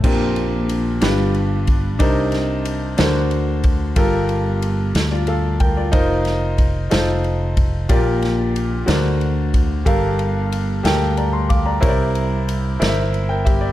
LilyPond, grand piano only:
\new Staff \with { instrumentName = "Grand piano" } { \time 6/8 \key bes \major \tempo 4. = 61 << { r2. | r2. | r4. r16 <f' d''>16 <a' f''>8 <bes' g''>16 <f' d''>16~ | <f' d''>16 r2 r8. |
r2. | r2 <d'' bes''>16 c'''16 <f'' d'''>16 <d'' bes''>16~ | <d'' bes''>16 r2 <bes' g''>16 <g' e''>16 d''16 | } \\ { <bes, c' d' g' bes'>4. <g, d' f' g' b'>4. | <c d' ees' bes' c''>4. <d d' fis' ais' c''>4. | <g, f' g' a' bes'>4. r4. | <ees' f' bes' c''>4. <ees' f' a' c''>4. |
<bes, f' g' bes' d''>4. <d fis' ais' c'' d''>4. | <g, g' a' bes' f''>4. <g' a' bes' g''>4. | <c e' bes' c'' des'' d''>4. <e' bes' c'' d'' e''>4. | } >> }